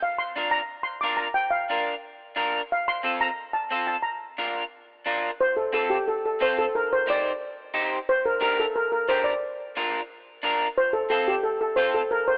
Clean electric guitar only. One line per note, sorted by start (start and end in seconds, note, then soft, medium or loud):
0.36 0.60 D4 medium
0.36 0.60 F4 medium
0.36 0.60 A#4 medium
1.03 1.27 D4 medium
1.03 1.27 F4 medium
1.03 1.27 A#4 medium
1.70 1.94 D4 medium
1.70 1.94 F4 medium
1.70 1.94 A#4 medium
2.36 2.60 D4 medium
2.36 2.60 F4 medium
2.36 2.61 A#4 medium
3.03 3.28 C4 medium
3.03 3.28 F4 medium
3.03 3.28 A4 medium
3.71 3.95 C4 medium
3.71 3.95 F4 medium
3.71 3.95 A4 medium
4.38 4.62 D4 medium
4.38 4.62 F4 medium
4.38 4.63 A#4 medium
5.06 5.29 D4 medium
5.06 5.30 F4 medium
5.06 5.30 A#4 medium
5.72 5.97 C4 medium
5.72 5.97 F4 medium
5.72 5.97 A4 medium
6.41 6.64 C4 medium
6.41 6.64 F4 medium
6.41 6.64 A4 medium
7.07 7.31 D#4 medium
7.07 7.31 G4 medium
7.07 7.31 C5 medium
7.74 7.98 D#4 medium
7.74 7.98 G4 medium
7.74 7.98 C5 medium
8.41 8.65 D4 medium
8.41 8.65 G4 medium
8.41 8.65 A#4 medium
9.09 9.32 D4 medium
9.09 9.32 G4 medium
9.09 9.33 A#4 medium
9.77 10.00 D4 medium
9.77 10.00 F4 medium
9.77 10.00 A#4 medium
10.43 10.67 D4 medium
10.43 10.67 F4 medium
10.43 10.67 A#4 medium
11.10 11.33 C4 medium
11.10 11.34 F4 medium
11.10 11.34 A4 medium
11.77 12.01 C4 medium
11.77 12.01 F4 medium
11.77 12.01 A4 medium